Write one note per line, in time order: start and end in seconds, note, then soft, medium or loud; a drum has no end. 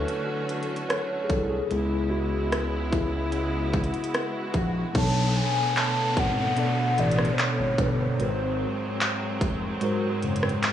0.00 1.67 D3 medium
0.00 1.67 F#3 medium
0.00 1.67 A3 medium
0.00 1.67 C#4 soft
0.00 1.67 C#4 medium
0.00 1.67 E4 medium
0.00 1.67 F#4 medium
0.00 0.93 A4 medium
0.00 1.72 B4 loud
0.00 0.89 C#5 loud
0.00 swell medium
0.08 closed hi-hat medium
0.49 closed hi-hat medium
0.63 closed hi-hat medium
0.76 closed hi-hat medium
0.89 1.26 C#5 medium
0.89 cross-stick loud
0.89 closed hi-hat medium
1.24 1.30 G#4 medium
1.29 1.60 C2 medium
1.29 1.51 A4 medium
1.29 kick medium
1.29 closed hi-hat medium
1.49 2.13 G#4 medium
1.71 3.90 C#2 loud
1.71 4.92 C#3 medium
1.71 2.25 G#3 soft
1.71 4.92 G#3 medium
1.71 2.25 B3 soft
1.71 4.92 B3 medium
1.71 4.92 E4 medium
1.71 2.25 E4 medium
1.71 closed hi-hat medium
2.10 2.94 F#4 medium
2.52 cross-stick loud
2.52 closed hi-hat medium
2.91 4.09 E4 medium
2.91 kick medium
2.91 closed hi-hat medium
3.32 closed hi-hat medium
3.73 kick medium
3.73 closed hi-hat soft
3.84 closed hi-hat soft
3.94 closed hi-hat medium
4.04 closed hi-hat medium
4.14 cross-stick loud
4.14 closed hi-hat medium
4.54 4.85 A#1 medium
4.54 kick medium
4.54 closed hi-hat medium
4.94 5.41 B1 loud
4.94 6.25 B2 medium
4.94 8.16 D3 medium
4.94 8.16 A3 medium
4.94 6.26 B3 medium
4.94 8.16 B3 medium
4.94 6.26 D4 medium
4.94 6.27 A4 medium
4.94 6.27 C#5 medium
4.94 5.39 A5 loud
4.94 kick loud
4.94 closed hi-hat medium
4.94 crash loud
4.94 downlifter medium
5.37 5.80 G#5 loud
5.76 6.20 A5 loud
5.76 clap loud
5.76 closed hi-hat medium
6.17 6.47 G#1 medium
6.17 7.01 F#5 loud
6.17 kick loud
6.17 closed hi-hat medium
6.56 7.55 B2 medium
6.56 7.55 B3 medium
6.56 7.56 D4 medium
6.56 7.56 A4 medium
6.56 7.57 D5 medium
6.56 closed hi-hat medium
6.98 7.29 A1 loud
6.98 7.35 D5 loud
6.98 closed hi-hat medium
7.11 closed hi-hat medium
7.19 cross-stick medium
7.25 closed hi-hat medium
7.33 7.42 C5 medium
7.39 7.83 C#5 medium
7.39 clap loud
7.39 closed hi-hat medium
7.59 7.74 G#1 medium
7.78 8.09 G1 medium
7.78 8.11 B2 medium
7.78 8.11 B3 medium
7.78 8.12 D4 medium
7.78 8.12 A4 medium
7.78 7.94 B4 medium
7.78 8.13 C#5 medium
7.78 kick medium
7.78 closed hi-hat medium
7.94 8.03 B4 medium
8.02 9.22 C5 medium
8.18 8.66 G#1 loud
8.18 9.50 G#2 medium
8.18 10.73 F#3 medium
8.18 9.50 G#3 medium
8.18 10.73 G#3 medium
8.18 10.73 C4 medium
8.18 9.51 F#4 medium
8.18 9.51 A#4 medium
8.18 8.27 B4 medium
8.18 closed hi-hat medium
8.29 9.55 C5 medium
9.01 clap loud
9.01 closed hi-hat medium
9.41 9.72 F1 loud
9.41 kick medium
9.41 closed hi-hat medium
9.80 10.73 G#2 medium
9.80 10.73 G#3 medium
9.80 10.73 F#4 medium
9.80 10.73 A#4 medium
9.80 10.73 C5 loud
9.80 closed hi-hat medium
10.22 10.53 F#1 loud
10.22 closed hi-hat medium
10.36 closed hi-hat medium
10.43 cross-stick loud
10.49 closed hi-hat medium
10.63 clap loud
10.63 closed hi-hat medium